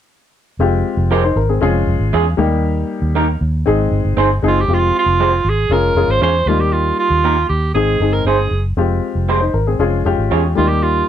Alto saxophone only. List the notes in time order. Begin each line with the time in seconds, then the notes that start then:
4.48 F4
4.60 G4
4.73 F4
4.99 F4
5.49 G#4
5.72 A#4
6.11 C5
6.23 C5
6.48 F4
6.60 G4
6.73 F4
6.99 F4
7.49 G4
7.75 G#4
8.13 A#4
8.27 G#4
10.57 F4
10.68 G4
10.82 F4